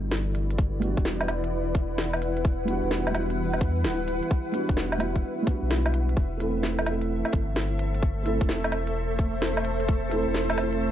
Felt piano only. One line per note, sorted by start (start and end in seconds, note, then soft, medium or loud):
0.00 0.78 G3 medium
0.00 0.79 B3 medium
0.00 0.80 D4 medium
0.00 0.82 F#4 medium
0.80 1.25 G3 medium
0.80 1.26 B3 medium
0.80 1.27 D4 medium
0.84 1.27 F#4 loud
2.65 3.09 G3 medium
2.65 3.11 B3 medium
2.65 3.12 D4 medium
2.70 3.13 F#4 loud
3.10 4.50 G3 medium
3.10 4.51 B3 medium
3.15 4.52 D4 medium
3.15 4.54 F#4 medium
4.52 4.97 G3 medium
4.52 4.98 B3 medium
4.52 4.98 D4 medium
4.52 4.99 F#4 medium
4.98 5.41 G3 medium
4.98 5.43 B3 medium
4.98 5.45 D4 medium
4.98 5.46 F#4 medium
5.42 6.13 G3 medium
5.42 6.15 B3 medium
5.48 6.16 D4 medium
5.48 6.18 F#4 medium
6.38 6.81 A3 medium
6.38 6.83 C4 medium
6.38 6.85 E4 medium
6.38 6.85 A4 medium
6.82 8.22 A3 medium
6.82 8.23 C4 medium
6.87 8.24 E4 medium
6.87 8.26 A4 medium
8.23 8.69 A3 medium
8.23 8.70 C4 medium
8.23 8.70 E4 medium
8.27 8.71 A4 loud
10.09 10.52 A3 medium
10.09 10.55 C4 medium
10.09 10.57 E4 medium
10.14 10.57 A4 loud
10.54 10.91 A3 medium
10.54 10.91 C4 medium
10.60 10.91 E4 medium
10.60 10.91 A4 medium